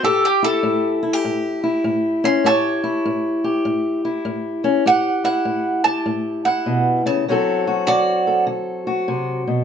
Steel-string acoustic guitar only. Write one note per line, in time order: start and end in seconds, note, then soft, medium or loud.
0.03 0.60 A2 medium
0.03 1.02 G4 medium
0.43 1.03 E4 medium
0.63 1.20 A2 medium
1.03 1.13 E4 medium
1.13 2.44 G4 medium
1.25 1.81 A2 medium
1.64 2.83 E4 medium
1.84 2.40 A2 medium
2.24 2.48 C#4 medium
2.44 3.01 A2 medium
2.44 3.43 G4 medium
2.84 4.04 E4 medium
3.05 3.61 A2 medium
3.44 4.83 G4 medium
3.65 4.21 A2 medium
4.05 4.84 E4 medium
4.25 4.81 A2 medium
4.64 4.83 C#4 medium
4.86 5.42 A2 medium
4.86 5.84 G4 medium
5.24 6.44 E4 medium
5.45 6.02 A2 medium
5.86 7.25 G4 medium
6.06 6.62 A2 medium
6.46 7.25 E4 soft
6.66 7.05 B2 medium
7.06 7.27 C#3 medium
7.28 7.84 D3 medium
7.28 9.64 F#3 medium
7.28 9.64 C4 medium
7.28 7.66 F#4 medium
7.28 8.27 A4 medium
7.67 8.86 F#4 medium
7.88 8.43 D3 medium
8.27 9.64 A4 medium
8.47 9.03 D3 medium
8.87 9.64 F#4 medium
9.08 9.47 C3 medium
9.47 9.64 B2 medium